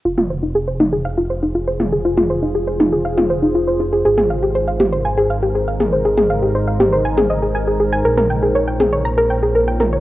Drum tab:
T2 |-o----o-------o-|-o----o--o------|-o----o-------o-|-o----o--o------|

T2 |-o----o-------o-|